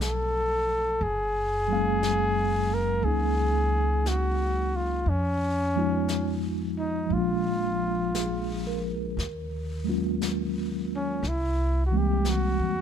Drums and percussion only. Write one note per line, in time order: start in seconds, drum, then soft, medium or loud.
0.01 brush sweep soft
0.01 snare soft
0.01 hi-hat pedal soft
1.02 brush sweep soft
2.03 brush sweep soft
2.03 snare soft
2.03 hi-hat pedal soft
3.05 brush sweep soft
4.06 brush sweep soft
4.06 snare soft
4.06 hi-hat pedal soft
5.07 brush sweep soft
6.08 brush sweep soft
6.08 snare soft
6.08 hi-hat pedal soft
7.12 brush sweep soft
8.15 brush sweep soft
8.15 snare soft
8.15 hi-hat pedal soft
9.19 brush sweep soft
9.19 snare soft
10.22 brush sweep soft
10.22 snare soft
10.22 hi-hat pedal soft
11.23 brush sweep soft
11.23 snare soft
12.25 brush sweep soft
12.25 snare soft
12.25 hi-hat pedal soft